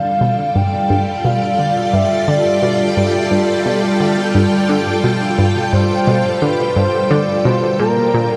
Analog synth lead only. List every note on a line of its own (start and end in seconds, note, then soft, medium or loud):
0.00 0.57 F5 loud
0.56 1.26 G5 loud
1.24 1.95 F5 loud
1.93 2.29 E5 medium
2.28 3.66 D5 medium
5.73 6.44 C5 loud
6.42 6.78 B4 loud
6.76 7.12 C5 loud
7.11 7.47 D5 loud
7.45 7.79 C5 loud
7.80 8.37 A#4 loud